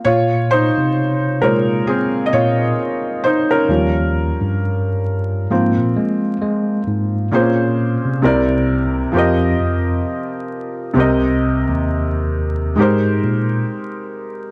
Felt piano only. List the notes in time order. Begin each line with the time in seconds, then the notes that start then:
0.05 F4 C#5
0.51 D#4 C5
1.42 A#2 G#3 A#4 C5 C#5
1.87 C4 G#4
2.26 D#5
2.33 F4 C#5
3.24 D#4 C5
3.51 C#4 A#4
3.69 F3 G3 C#4
5.50 F3 A#3 C4
7.31 A#2 A#3 C4 G#4 C5
7.39 C#4
8.22 C3 C4 E4 A#4 D5
9.12 F3 C4 G4
9.17 A#4 D#5
10.94 C3 C4 G4
10.98 A#4 D#5
12.75 G#3 D#4 G4
12.80 A#4 C5